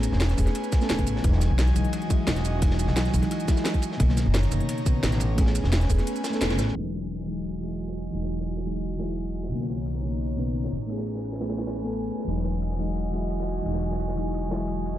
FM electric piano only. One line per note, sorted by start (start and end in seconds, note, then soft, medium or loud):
0.00 0.35 A3 medium
0.00 0.35 B3 medium
0.00 0.36 C#4 medium
0.00 0.37 G#4 medium
0.37 0.70 A3 medium
0.37 0.70 B3 medium
0.37 0.71 C#4 medium
0.37 0.71 G#4 medium
0.78 1.21 A3 medium
0.78 1.22 B3 medium
0.78 1.22 C#4 medium
0.84 1.23 A4 loud
1.21 1.72 E3 medium
1.21 1.73 F#3 medium
1.21 1.74 G#3 medium
1.27 1.75 D#4 medium
1.74 2.06 E3 medium
1.74 2.08 F#3 medium
1.74 2.08 G#3 medium
1.74 2.09 D#4 medium
2.08 2.58 E3 medium
2.08 2.60 F#3 medium
2.08 2.60 G#3 medium
2.13 2.61 E4 loud
2.59 3.10 E3 medium
2.59 3.11 F#3 medium
2.59 3.12 G#3 medium
2.65 3.13 D#4 medium
3.12 3.44 E3 medium
3.12 3.46 F#3 medium
3.12 3.46 G#3 medium
3.12 3.47 D#4 medium
3.46 3.97 E3 medium
3.46 3.97 F#3 medium
3.46 3.98 G#3 medium
3.51 3.99 E4 loud
3.97 4.48 B2 medium
3.97 4.49 C#3 medium
3.97 4.50 D#3 medium
4.03 4.51 A#3 medium
4.51 4.84 B2 medium
4.51 4.84 C#3 medium
4.51 4.84 D#3 medium
4.51 4.85 A#3 medium
4.85 5.19 B2 medium
4.85 5.20 C#3 medium
4.85 5.20 D#3 medium
4.85 5.20 B3 loud
5.36 5.86 A3 medium
5.36 5.87 B3 medium
5.36 5.88 C#4 medium
5.41 5.89 G#4 medium
5.88 6.21 A3 medium
5.88 6.22 B3 medium
5.88 6.22 C#4 medium
5.88 6.23 G#4 medium
6.30 6.72 A3 medium
6.30 6.73 B3 medium
6.30 6.74 C#4 medium
6.35 6.75 A4 loud
6.73 7.24 E3 medium
6.73 7.25 F#3 medium
6.73 7.26 G#3 medium
6.78 7.27 D#4 medium
7.26 7.58 E3 medium
7.26 7.60 F#3 medium
7.26 7.60 G#3 medium
7.26 7.60 D#4 medium
7.59 8.10 E3 medium
7.59 8.11 F#3 medium
7.59 8.12 G#3 medium
7.65 8.13 E4 medium
8.11 8.62 E3 medium
8.11 8.63 F#3 medium
8.11 8.64 G#3 medium
8.16 8.65 D#4 medium
8.64 8.96 E3 medium
8.64 8.98 F#3 medium
8.64 8.98 G#3 medium
8.64 8.99 D#4 medium
8.97 9.48 E3 medium
8.97 9.49 F#3 medium
8.97 9.50 G#3 medium
9.03 9.51 E4 medium
9.49 10.00 B2 medium
9.49 10.01 C#3 medium
9.49 10.02 D#3 medium
9.55 10.03 A#3 medium
10.02 10.35 B2 medium
10.02 10.36 C#3 medium
10.02 10.36 D#3 medium
10.02 10.37 A#3 medium
10.37 10.71 B2 medium
10.37 10.71 C#3 medium
10.37 10.72 D#3 medium
10.37 10.72 B3 medium
10.87 11.38 A3 medium
10.87 11.39 B3 medium
10.87 11.40 C#4 medium
10.92 11.41 G#4 medium
11.40 11.73 A3 medium
11.40 11.74 B3 medium
11.40 11.74 C#4 medium
11.40 11.74 G#4 medium
11.82 12.24 A3 medium
11.82 12.25 B3 medium
11.82 12.26 C#4 medium
11.87 12.27 A4 loud
12.25 12.76 E3 medium
12.25 12.77 F#3 medium
12.25 12.77 G#3 medium
12.30 12.78 D#4 medium
12.78 13.09 E3 medium
12.78 13.11 F#3 medium
12.78 13.12 G#3 medium
12.78 13.12 D#4 medium
13.11 13.61 E3 medium
13.11 13.63 F#3 medium
13.11 13.64 G#3 medium
13.16 13.65 E4 medium
13.63 14.14 E3 medium
13.63 14.15 F#3 medium
13.63 14.16 G#3 medium
13.68 14.16 D#4 medium
14.16 14.48 E3 medium
14.16 14.49 F#3 medium
14.16 14.50 G#3 medium
14.16 14.50 D#4 medium
14.49 14.98 E3 medium
14.49 14.98 F#3 medium
14.49 14.98 G#3 medium
14.54 14.98 E4 medium